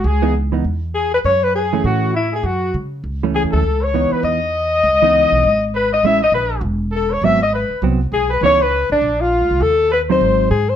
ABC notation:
X:1
M:4/4
L:1/8
Q:"Swing" 1/4=201
K:C#m
V:1 name="Alto saxophone"
G2 z4 G B | c B G2 F2 E G | F2 z4 G A- | A c2 B d4- |
d6 B d | e d B2 z2 A c | e d B2 z2 G B | c B2 =D2 ^E3 |
A2 B ^B3 G B |]
V:2 name="Trumpet"
G2 z4 G B | c B G2 F2 E G | F2 z4 G A- | A c2 B d4- |
d6 B d | e d B2 z2 A c | e d B2 z2 G B | c B2 =D2 ^E3 |
A2 B ^B4 z |]
V:3 name="Hollow-body jazz guitar"
z [E,B,D] z [E,B,D] z4 | z3 [E,A,C]3 z2 | z4 z [E,A,C]3 | z2 [E,B,D]3 z3 |
z [E,B,D]3 z4 | [G,CE] z6 z | [F,B,^B,] z3 [F,=B,^B,] z3 | [E,B,D] z6 z |
z3 [F,^B,D]3 z2 |]
V:4 name="Upright bass" clef=bass
C,,4 E,,4 | F,,4 A,,4 | F,,2 C,2 C,,2- (3C,, E,, =D,, | C,,3 z E,,4 |
C,,3 B,,, G,,,4 | A,,,2 ^A,,,2 E,,,4 | G,,,3 z ^B,,,2 =B,,,2 | C,,3 A,,, ^A,,,2- (3A,,, =D,, ^B,,, |
D,,4 G,,,2 G,,2 |]